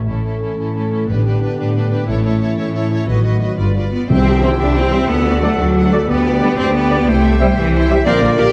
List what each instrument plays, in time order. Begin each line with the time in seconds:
0.07 double bass section A1, cello section A2, timpani A2, trombone section E3 A3, french horn section C#4 A4, viola section C#4, violin section E4 A4
0.25 viola section C#4, violin section E4 A4
0.42 viola section C#4, violin section E4 A4
0.58 cello section A2, viola section C#4, violin section E4 A4
0.75 viola section C#4, violin section E4 A4
0.92 viola section C#4, violin section E4 A4
1.09 double bass section A1, cello section A2, timpani A2, trombone section D3 B3, viola section D4, french horn section D4 G4, violin section G4 B4
1.25 viola section D4, violin section G4 B4
1.42 viola section D4, violin section G4 B4
1.58 cello section A2, viola section D4, violin section G4 B4
1.75 viola section D4, violin section G4 B4
1.91 viola section D4, violin section G4 B4
2.08 double bass section A1, cello section A2, trombone section E3 A3, french horn section C#4 E4, viola section E4, violin section A4 C#5
2.24 viola section E4, violin section A4 C#5
2.40 viola section E4, violin section A4 C#5
2.57 cello section A2, viola section E4, violin section A4 C#5
2.73 viola section E4, violin section A4 C#5
2.90 viola section E4, violin section A4 C#5
3.06 double bass section A1, cello section A2, trombone section D#3 F#3, french horn section B3 F#4, viola section F#4, violin section B4 D#5
3.25 viola section F#4, violin section B4 D#5
3.41 viola section F#4, violin section B4 D#5
3.57 double bass section G1, cello section G2, trombone section D3 G3, viola section F4, french horn section F4, violin section B4 D5
3.76 viola section F4, violin section B4 D5
3.92 cello section B3, viola section F4, violin section B4 D5
4.09 double bass section C2, timpani C3, cello section C4, viola section E4, clarinet G4, violin section C5 G5, oboe E5, flute G5, tam-tam
4.26 viola section G4, violin section E5
4.41 trombone section E3 G3, cello section C4, french horn section E4 G4, viola section E4, trumpet C5, violin section C5 G5
4.59 double bass section C2, cello section D4, viola section G4, violin section E5
4.75 cello section C4, viola section E4, violin section C5 G5
4.90 trombone section E3 G3, french horn section E4 G4, viola section G4, trumpet C5, violin section E5
5.09 double bass section D2, cello section B3, viola section D4, violin section A4 F#5, clarinet A4, flute F#5
5.25 violin section F#4 D5, viola section F#4
5.40 trombone section D3 F#3, cello section A3, viola section D4, french horn section A4, violin section A4, trumpet D5
5.44 violin section F#5
5.59 double bass section D2, cello section F#3, viola section F#4, violin section F#4 D5
5.76 viola section D4, violin section A4 F#5
5.91 trombone section D3 F#3, cello section A3, viola section F#4, violin section F#4 D5, french horn section A4, trumpet D5
6.08 double bass section D2, cello section B3, clarinet G4, violin section G4 B4, viola section B4, oboe D5, flute G5
6.26 viola section G4, violin section B4 D5
6.41 trombone section D3 G3, cello section B3, french horn section G4 B4, violin section G4 B4, viola section B4, trumpet D5
6.58 double bass section D2, cello section C4, viola section G4, violin section B4 D5
6.74 cello section B3, violin section G4 B4, viola section B4
6.90 trombone section D3 G3, french horn section G4 B4, viola section G4, violin section B4 D5, trumpet D5
7.07 double bass section C2, cello section A3, viola section E4, oboe C5, violin section C5 G5
7.24 viola section G4, violin section E5
7.40 trombone section C3 G3, cello section G3, viola section E4, french horn section G4 C5, violin section C5 G5, trumpet E5
7.56 double bass section C2, cello section E3, viola section G4, violin section E5
7.73 viola section E4, violin section C5 G5
7.89 trombone section C3 G3, viola section G4, french horn section G4 C5, trumpet E5, violin section E5
8.05 double bass section A#1, trombone section D3 A#3, cello section C4, french horn section F4 A#4, clarinet A#4, viola section A#4, oboe D5, violin section D5, trumpet D5, flute F5
8.22 double bass section A#1, cello section A#3, violin section F4, clarinet A#4, viola section A#4, oboe D5, flute F5
8.38 double bass section A#1, cello section G4, viola section A#4, clarinet A#4, violin section A#4, oboe D5, flute F5